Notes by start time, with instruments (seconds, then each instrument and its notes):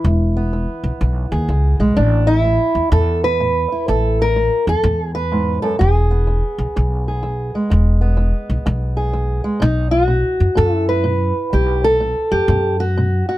Already playing: steel-string acoustic guitar E3
0.04 upright bass E1, steel-string acoustic guitar E2
0.37 steel-string acoustic guitar B3
0.53 steel-string acoustic guitar E2
0.84 upright bass B1
1.01 upright bass B1, steel-string acoustic guitar E2
1.32 upright bass D#2, steel-string acoustic guitar G#4
1.49 upright bass C#2, steel-string acoustic guitar E2
1.80 upright bass B1, steel-string acoustic guitar G#3
1.97 upright bass A1, steel-string acoustic guitar A2 D4
2.27 steel-string acoustic guitar E4
2.44 steel-string acoustic guitar A2
2.75 upright bass E2
2.92 upright bass E2, steel-string acoustic guitar A2 A4
3.24 steel-string acoustic guitar B4
3.40 steel-string acoustic guitar A2
3.72 steel-string acoustic guitar E4
3.88 upright bass A1, steel-string acoustic guitar A2 A4
4.22 steel-string acoustic guitar A#4
4.36 steel-string acoustic guitar A2
4.67 upright bass E2, steel-string acoustic guitar A4
4.83 upright bass E2, steel-string acoustic guitar A2
5.15 steel-string acoustic guitar B4
5.32 steel-string acoustic guitar G#2
5.62 steel-string acoustic guitar F#2 A4
5.79 upright bass E1, steel-string acoustic guitar E2 G#4
6.11 steel-string acoustic guitar B3
6.27 steel-string acoustic guitar E2
6.58 upright bass B1
6.76 upright bass B1, steel-string acoustic guitar E2
7.08 steel-string acoustic guitar G#4
7.23 steel-string acoustic guitar E2
7.55 steel-string acoustic guitar G#3
7.70 upright bass E1, steel-string acoustic guitar E2
8.01 steel-string acoustic guitar B3
8.17 steel-string acoustic guitar E2
8.50 upright bass B1
8.66 upright bass B1, steel-string acoustic guitar E2
8.97 steel-string acoustic guitar G#4
9.13 steel-string acoustic guitar E2
9.44 steel-string acoustic guitar G#3
9.60 upright bass B1, steel-string acoustic guitar B2 D#4
9.91 steel-string acoustic guitar F#4
10.08 steel-string acoustic guitar B2
10.40 upright bass F#2
10.55 upright bass F#2, steel-string acoustic guitar B2 A4
10.75 steel-string acoustic guitar E4
10.89 steel-string acoustic guitar B4
11.04 steel-string acoustic guitar B2
11.53 upright bass B1, steel-string acoustic guitar B2 G4
11.84 steel-string acoustic guitar A4
12.00 steel-string acoustic guitar B2
12.31 upright bass F#2, steel-string acoustic guitar G4
12.48 upright bass F#2, steel-string acoustic guitar B2
12.80 steel-string acoustic guitar F#4
12.98 steel-string acoustic guitar B2
13.29 steel-string acoustic guitar F#4